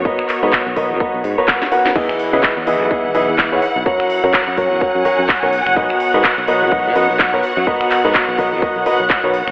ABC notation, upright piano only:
X:1
M:4/4
L:1/16
Q:"Swing 16ths" 1/4=126
K:B
V:1 name="Upright piano"
[B,FABd]3 [B,FABd]2 z [B,FABd]2 [B,FABd]2 z [B,FABc] [B,FABf] z [FABf]2 | [E,EGBd]3 [E,EGBd]2 z [E,EGBd]2 [E,EGBd]2 [E,EGBd] z2 [E,EGBc] z2 | [F,CFAc]3 [F,CFAc]2 z [F,CFAc]2 [F,CFAc]2 [F,CFAc] z2 [CFAc] z2 | [B,FABd]3 [B,FABd]2 z [B,FABd]2 [B,FABd]2 [B,FABd] z2 [B,FABc] z2 |
[B,FABd]3 [B,FABd]2 z [B,FABd]2 [B,FABd]2 [B,FABd] z2 [B,FABc] z2 |]